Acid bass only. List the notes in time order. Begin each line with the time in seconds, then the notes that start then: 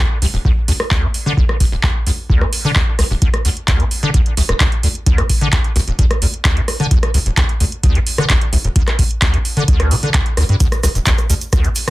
0.22 C2
0.34 D1
0.45 D2
0.68 D2
0.91 D2
1.03 F2
1.26 D3
1.37 D2
1.60 C2
1.72 D1
1.83 D2
2.07 D2
2.30 D2
2.42 F2
2.65 D3
2.76 D2
2.99 C2
3.11 D1
3.22 D2
3.45 D2
3.68 D2
3.80 F2
4.03 D3
4.14 D2
4.37 C2
4.49 D1
4.60 D2
4.83 D2
5.07 D2
5.18 F2
5.41 D3
5.53 D2
5.76 C2
5.88 D1
5.99 D2
6.22 D2
6.45 D2
6.57 F2
6.80 D3
6.91 D2
7.14 C2
7.26 D1
7.37 D2
7.60 D2
7.83 D2
7.95 F2
8.18 D3
8.30 D2
8.53 C2
8.64 D1
8.76 D2
8.99 D2
9.22 D2
9.34 F2
9.57 D3
9.68 D2
9.91 D3
10.03 D3
10.14 D2
10.37 D2
10.49 G2
10.60 D2
10.83 C2
10.95 D1
11.06 D2
11.30 D2
11.53 D2
11.64 F2